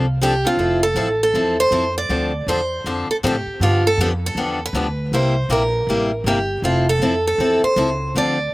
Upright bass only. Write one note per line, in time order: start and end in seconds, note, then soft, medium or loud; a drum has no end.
0.00 0.44 C2 medium
0.57 0.94 F1 medium
0.95 1.32 A1 medium
1.34 1.70 E2 medium
1.71 2.08 F2 medium
2.09 2.46 D2 medium
2.47 2.84 E2 medium
2.84 3.07 F2 medium
3.09 muted upright bass stroke soft
3.23 3.45 A2 medium
3.46 muted upright bass stroke soft
3.60 3.97 G2 medium
3.97 4.34 F2 medium
4.35 4.72 E2 medium
4.73 5.11 D2 medium
5.12 5.48 C2 medium
5.49 5.86 A#1 medium
5.87 6.23 A1 medium
6.24 6.62 G1 medium
6.62 6.99 F1 medium
6.99 7.37 F2 medium
7.38 7.61 E2 medium
7.63 muted upright bass stroke soft
7.76 8.14 C#2 medium
8.15 8.52 D2 medium